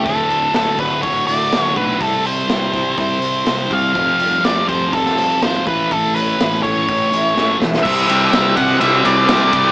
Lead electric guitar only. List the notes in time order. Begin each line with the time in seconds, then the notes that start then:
0.05 A4
0.56 A4
0.79 B4
1.03 C#5
1.27 D5
1.61 C#5
1.77 B4
2.01 A4
2.26 C5
2.99 C5
3.73 F5
4.45 D5
4.69 C5
4.93 A4
5.42 C5
5.67 B4
5.91 A4
6.15 B4
6.63 C#5
7.83 E5
8.08 E5
8.57 F#5
8.81 E5
9.06 D5